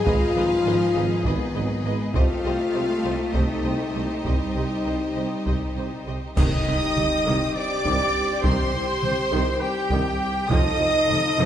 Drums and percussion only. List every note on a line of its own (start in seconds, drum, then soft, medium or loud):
0.07 taiko loud
1.25 taiko medium
2.15 taiko loud
3.34 taiko medium
4.25 taiko medium
5.46 taiko medium
6.37 concert bass drum medium
6.37 taiko loud
6.37 crash medium
6.97 taiko mid medium
7.85 taiko medium
8.44 taiko medium
9.03 taiko mid medium
9.90 taiko medium
10.50 taiko loud
11.10 taiko mid medium